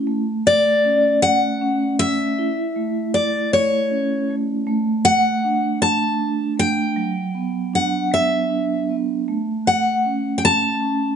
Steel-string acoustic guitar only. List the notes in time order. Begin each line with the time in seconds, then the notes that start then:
0.47 D5
1.22 F#5
1.99 E5
3.14 D5
3.53 C#5
5.05 F#5
5.82 A5
6.59 G5
7.75 F#5
8.14 E5
9.67 F#5
10.38 G5
10.45 A5